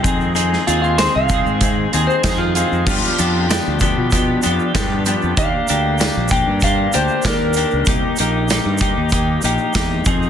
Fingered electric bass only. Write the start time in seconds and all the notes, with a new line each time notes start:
0.04 F2
0.68 D#2
1.16 C2
1.46 G#2
1.94 D#2
2.24 F2
2.72 F2
2.87 G2
3.20 F2
3.67 D2
3.97 B2
4.46 F2
4.75 G2
5.23 F2
5.37 D#2
5.70 D2
6.17 A#1
6.47 G2
6.95 D2
7.25 D#2
7.73 C#2
7.87 C2
8.20 A#1
8.65 G2
8.97 D#2
9.44 A#1
9.75 E2
10.06 F2